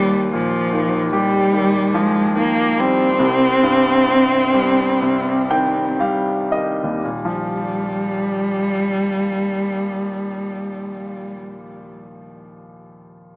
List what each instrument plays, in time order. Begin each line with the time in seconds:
Already playing: grand piano D#2, cello G3
0.33 grand piano A#2, cello F3
0.73 grand piano D#3
1.13 cello G3, grand piano G4
1.53 grand piano D#3
1.94 grand piano F3, cello G#3
2.35 grand piano D#3, cello A#3
2.78 grand piano G3, cello C4
3.19 grand piano C2
3.63 grand piano G2
4.08 grand piano C3
4.54 grand piano G3
5.02 grand piano C3
5.51 grand piano D#3 G5
6.00 grand piano G3 F5
6.52 grand piano D#3 D#5
6.83 grand piano D#2
7.04 grand piano A#2, cello G3
7.25 grand piano F3